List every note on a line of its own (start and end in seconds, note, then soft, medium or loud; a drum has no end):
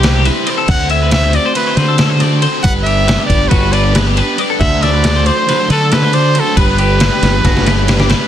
0.00 0.29 C2 medium
0.00 0.28 G3 medium
0.00 0.24 G4 medium
0.00 0.15 B4 medium
0.00 ride loud
0.04 0.27 C4 medium
0.04 0.25 E4 medium
0.04 0.24 C5 medium
0.04 snare loud
0.15 0.25 G4 medium
0.25 0.47 G3 medium
0.25 0.48 C4 medium
0.25 0.48 E4 medium
0.25 0.47 B4 medium
0.25 0.49 C5 medium
0.25 snare soft
0.25 ride medium
0.46 0.67 C3 medium
0.46 0.68 E3 medium
0.46 0.68 G3 medium
0.46 0.68 C4 medium
0.46 0.69 E4 medium
0.46 0.69 C5 loud
0.46 0.58 D5 medium
0.46 ride medium
0.58 0.69 A4 medium
0.68 1.37 D2 loud
0.68 1.11 A3 loud
0.68 1.12 C4 loud
0.68 1.14 F#4 loud
0.68 1.14 C5 loud
0.68 0.90 F#5 loud
0.68 kick loud
0.68 crash loud
0.90 1.01 E5 medium
0.90 1.11 E5 medium
0.90 ride medium
1.02 1.23 B4 medium
1.11 1.55 A3 medium
1.11 1.55 C4 medium
1.11 1.57 F#4 medium
1.11 1.57 C5 medium
1.11 1.37 E5 loud
1.11 snare loud
1.11 ride loud
1.23 1.35 C5 medium
1.33 1.45 D5 medium
1.33 1.55 D5 medium
1.33 ride medium
1.46 1.57 C5 medium
1.54 1.98 D3 loud
1.54 1.96 A3 loud
1.54 1.79 C4 loud
1.54 1.78 F#4 loud
1.54 1.78 B4 medium
1.54 1.67 B4 loud
1.54 1.76 C5 loud
1.54 ride loud
1.67 1.77 C5 medium
1.76 2.45 D3 medium
1.76 1.97 C4 medium
1.76 1.99 F#4 medium
1.76 1.88 B4 medium
1.76 1.98 C5 medium
1.76 1.99 C5 medium
1.76 snare soft
1.76 ride medium
1.88 1.97 A4 medium
1.97 2.41 A3 medium
1.97 2.22 C4 medium
1.97 2.22 F#4 medium
1.97 2.09 A4 medium
1.97 2.20 C5 medium
1.97 snare loud
1.97 ride loud
2.09 2.20 C5 medium
2.20 2.42 C4 medium
2.20 2.43 F#4 medium
2.20 2.44 C5 medium
2.20 2.42 D5 medium
2.20 snare soft
2.20 ride medium
2.42 2.62 D3 medium
2.42 2.63 A3 loud
2.42 2.63 C4 medium
2.42 2.65 F#4 medium
2.42 2.64 C5 medium
2.42 2.64 C5 loud
2.42 ride medium
2.63 3.16 G1 loud
2.63 3.29 G3 loud
2.63 3.04 B3 loud
2.63 3.07 D4 loud
2.63 3.06 G4 loud
2.63 2.86 B4 loud
2.63 3.07 B4 loud
2.63 2.73 F#5 loud
2.63 kick loud
2.63 ride loud
2.83 3.08 G4 medium
2.83 3.25 E5 loud
2.83 ride medium
3.05 3.49 B3 medium
3.05 3.51 D4 medium
3.05 3.50 G4 medium
3.05 3.19 B4 medium
3.05 3.52 B4 medium
3.05 snare loud
3.05 ride loud
3.19 3.40 G4 medium
3.26 3.47 G1 medium
3.26 3.50 D5 medium
3.30 kick medium
3.30 ride medium
3.48 4.20 G1 loud
3.48 3.94 G3 loud
3.48 3.92 B3 medium
3.48 3.74 D4 loud
3.48 3.73 F#4 loud
3.48 3.72 G4 loud
3.48 3.74 B4 medium
3.48 kick loud
3.48 ride loud
3.53 3.70 B4 loud
3.72 3.94 D4 medium
3.72 3.94 G4 medium
3.72 3.94 B4 medium
3.72 3.84 B4 medium
3.72 3.95 D5 medium
3.72 ride medium
3.84 3.95 G4 medium
3.93 4.38 B3 medium
3.93 4.19 D4 medium
3.93 4.17 G4 medium
3.93 4.06 B4 medium
3.93 4.15 B4 medium
3.93 snare loud
3.93 ride loud
4.06 4.18 G4 medium
4.16 4.39 D4 medium
4.16 4.39 G4 medium
4.16 4.39 B4 medium
4.16 ride medium
4.37 4.58 G3 medium
4.37 4.59 B3 loud
4.37 4.61 D4 loud
4.37 4.60 G4 medium
4.37 4.60 B4 loud
4.37 4.50 D5 medium
4.37 ride medium
4.50 4.61 A4 medium
4.59 5.29 D2 loud
4.59 5.25 D3 loud
4.59 5.47 F#3 loud
4.59 5.01 A3 medium
4.59 5.04 D4 loud
4.59 5.04 F#4 loud
4.59 5.05 C5 loud
4.59 4.84 E5 loud
4.59 4.82 F#5 loud
4.59 kick loud
4.59 crash loud
4.83 5.28 D5 loud
4.83 4.93 E5 medium
4.83 snare soft
4.83 ride medium
4.93 5.15 B4 medium
5.03 5.46 A3 medium
5.03 5.47 D4 medium
5.03 5.47 F#4 medium
5.03 5.48 C5 medium
5.03 snare loud
5.03 ride loud
5.16 5.26 C5 medium
5.26 5.70 C5 loud
5.26 5.37 D5 medium
5.26 ride medium
5.37 5.48 C5 medium
5.46 5.90 D3 loud
5.46 5.91 F#3 loud
5.46 5.71 A3 loud
5.46 5.72 D4 loud
5.46 5.69 F#4 loud
5.46 5.60 B4 loud
5.46 5.68 C5 loud
5.46 snare soft
5.46 ride loud
5.60 5.70 C5 medium
5.69 6.38 D3 loud
5.69 5.89 A3 medium
5.69 5.91 D4 medium
5.69 5.91 F#4 medium
5.69 5.94 A4 loud
5.69 5.81 B4 medium
5.69 5.92 C5 medium
5.69 ride medium
5.81 5.91 A4 medium
5.90 6.14 A3 medium
5.90 6.14 D4 medium
5.90 6.12 F#4 medium
5.90 6.02 A4 medium
5.90 6.16 B4 loud
5.90 6.11 C5 medium
5.90 snare loud
5.90 ride loud
6.02 6.13 C5 medium
6.12 6.34 A3 medium
6.12 6.36 D4 medium
6.12 6.35 F#4 medium
6.12 6.36 C5 medium
6.12 6.41 C5 medium
6.12 6.35 D5 medium
6.12 ride medium
6.34 6.55 D3 medium
6.34 6.55 F#3 loud
6.34 6.56 A3 medium
6.34 6.57 D4 medium
6.34 6.56 F#4 loud
6.34 6.56 C5 medium
6.34 6.57 C5 loud
6.34 ride medium
6.40 6.58 A4 loud
6.55 7.08 G1 loud
6.55 7.22 G3 loud
6.55 6.97 B3 medium
6.55 6.99 D4 loud
6.55 7.00 G4 loud
6.55 6.79 B4 medium
6.55 7.00 B4 loud
6.55 8.07 B4 medium
6.55 kick loud
6.55 ride loud
6.78 7.02 G4 medium
6.78 ride medium
6.98 7.43 B3 medium
6.98 7.44 D4 medium
6.98 7.44 G4 medium
6.98 7.44 B4 medium
6.98 7.12 B4 medium
6.98 snare loud
6.98 ride loud
7.12 7.34 G4 medium
7.22 7.40 G1 medium
7.22 snare medium
7.22 ride medium
7.43 8.13 G1 medium
7.43 7.87 G3 loud
7.43 7.85 B3 medium
7.43 7.66 D4 loud
7.43 7.66 F#4 medium
7.43 7.64 G4 loud
7.43 7.63 B4 loud
7.43 kick loud
7.43 snare medium
7.43 ride loud
7.57 snare medium
7.64 7.86 D4 medium
7.64 7.87 G4 medium
7.64 7.88 B4 medium
7.64 7.77 B4 medium
7.64 snare medium
7.64 ride medium
7.77 7.89 G4 medium
7.86 8.28 B3 medium
7.86 8.10 D4 medium
7.86 8.09 G4 medium
7.86 7.99 B4 medium
7.86 8.07 B4 medium
7.86 snare medium
7.86 ride loud
8.00 8.10 G4 medium
8.00 snare medium
8.08 8.28 D4 medium
8.08 8.28 G4 medium
8.08 8.28 B4 medium
8.08 snare loud
8.08 ride medium